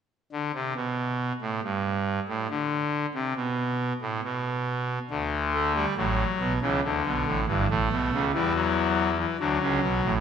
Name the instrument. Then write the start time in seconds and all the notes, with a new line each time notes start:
pipe organ
0.32 D3
0.54 C3
0.76 B2
1.42 A2
1.63 G2
2.29 A2
2.50 D3
3.14 C3
3.36 B2
4.02 A2
4.24 B2
5.10 D2 D3
5.54 A3
5.75 G3
5.97 A1 A2 F#3
6.40 B1 B2
6.62 C#2 C#3 E3
6.84 D2 D3
7.06 B1 B2
7.27 A1 A2
7.48 G1 G2 E3
7.70 A1 A2 A3
7.92 B1 B2
8.13 C#2 C#3
8.34 E2 E3 G3
8.55 F#3
9.19 E3
9.40 D2 D3 F#3
9.61 C#2 C#3
9.83 B1 B2
10.04 A1 A2